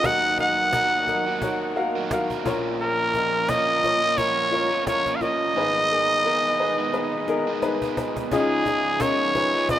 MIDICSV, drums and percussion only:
0, 0, Header, 1, 2, 480
1, 0, Start_track
1, 0, Key_signature, -6, "minor"
1, 0, Tempo, 689655
1, 29, Time_signature, 4, 2, 24, 8
1, 6815, End_track
2, 0, Start_track
2, 0, Title_t, "Cajon"
2, 28, Note_on_c, 9, 36, 123
2, 97, Note_off_c, 9, 36, 0
2, 266, Note_on_c, 9, 36, 62
2, 335, Note_off_c, 9, 36, 0
2, 505, Note_on_c, 9, 38, 101
2, 509, Note_on_c, 9, 36, 110
2, 574, Note_off_c, 9, 38, 0
2, 579, Note_off_c, 9, 36, 0
2, 747, Note_on_c, 9, 36, 55
2, 817, Note_off_c, 9, 36, 0
2, 986, Note_on_c, 9, 36, 116
2, 1056, Note_off_c, 9, 36, 0
2, 1227, Note_on_c, 9, 38, 30
2, 1297, Note_off_c, 9, 38, 0
2, 1467, Note_on_c, 9, 36, 121
2, 1470, Note_on_c, 9, 38, 119
2, 1537, Note_off_c, 9, 36, 0
2, 1540, Note_off_c, 9, 38, 0
2, 1603, Note_on_c, 9, 36, 65
2, 1672, Note_off_c, 9, 36, 0
2, 1709, Note_on_c, 9, 36, 107
2, 1779, Note_off_c, 9, 36, 0
2, 1950, Note_on_c, 9, 38, 50
2, 2020, Note_off_c, 9, 38, 0
2, 2188, Note_on_c, 9, 36, 68
2, 2258, Note_off_c, 9, 36, 0
2, 2426, Note_on_c, 9, 38, 98
2, 2431, Note_on_c, 9, 36, 110
2, 2496, Note_off_c, 9, 38, 0
2, 2501, Note_off_c, 9, 36, 0
2, 2672, Note_on_c, 9, 36, 64
2, 2741, Note_off_c, 9, 36, 0
2, 2908, Note_on_c, 9, 36, 106
2, 2978, Note_off_c, 9, 36, 0
2, 3149, Note_on_c, 9, 38, 31
2, 3218, Note_off_c, 9, 38, 0
2, 3388, Note_on_c, 9, 36, 117
2, 3391, Note_on_c, 9, 38, 108
2, 3458, Note_off_c, 9, 36, 0
2, 3461, Note_off_c, 9, 38, 0
2, 3522, Note_on_c, 9, 36, 68
2, 3592, Note_off_c, 9, 36, 0
2, 3626, Note_on_c, 9, 36, 58
2, 3696, Note_off_c, 9, 36, 0
2, 4827, Note_on_c, 9, 38, 60
2, 4897, Note_off_c, 9, 38, 0
2, 5066, Note_on_c, 9, 38, 73
2, 5135, Note_off_c, 9, 38, 0
2, 5306, Note_on_c, 9, 38, 92
2, 5376, Note_off_c, 9, 38, 0
2, 5441, Note_on_c, 9, 36, 82
2, 5511, Note_off_c, 9, 36, 0
2, 5548, Note_on_c, 9, 36, 99
2, 5618, Note_off_c, 9, 36, 0
2, 5683, Note_on_c, 9, 36, 92
2, 5752, Note_off_c, 9, 36, 0
2, 5787, Note_on_c, 9, 36, 116
2, 5857, Note_off_c, 9, 36, 0
2, 6026, Note_on_c, 9, 36, 73
2, 6095, Note_off_c, 9, 36, 0
2, 6264, Note_on_c, 9, 38, 98
2, 6268, Note_on_c, 9, 36, 127
2, 6333, Note_off_c, 9, 38, 0
2, 6337, Note_off_c, 9, 36, 0
2, 6507, Note_on_c, 9, 36, 68
2, 6577, Note_off_c, 9, 36, 0
2, 6744, Note_on_c, 9, 36, 127
2, 6814, Note_off_c, 9, 36, 0
2, 6815, End_track
0, 0, End_of_file